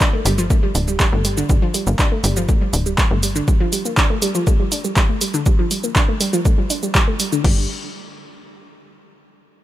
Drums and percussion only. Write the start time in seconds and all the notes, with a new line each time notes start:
0.01 kick, clap, shaker
0.26 open hi-hat, shaker
0.38 shaker
0.50 kick, shaker
0.75 open hi-hat, shaker
0.88 shaker
1.00 kick, clap, shaker
1.25 open hi-hat, shaker
1.37 shaker
1.49 kick, shaker
1.74 open hi-hat, shaker
1.87 shaker
1.99 kick, clap, shaker
2.24 open hi-hat, shaker
2.37 shaker
2.49 kick, shaker
2.74 open hi-hat, shaker
2.86 shaker
2.98 kick, clap, shaker
3.23 open hi-hat, shaker
3.36 shaker
3.48 kick, shaker
3.73 open hi-hat, shaker
3.85 shaker
3.97 kick, clap, shaker
4.22 open hi-hat, shaker
4.35 shaker
4.47 kick, shaker
4.72 open hi-hat, shaker
4.84 shaker
4.97 kick, clap, shaker
5.21 open hi-hat, shaker
5.34 shaker
5.46 kick, shaker
5.71 open hi-hat, shaker
5.84 shaker
5.96 kick, clap, shaker
6.21 open hi-hat, shaker
6.33 shaker
6.45 kick, shaker
6.70 open hi-hat, shaker
6.83 shaker
6.95 kick, clap, shaker
7.20 open hi-hat, shaker
7.32 shaker
7.44 kick, crash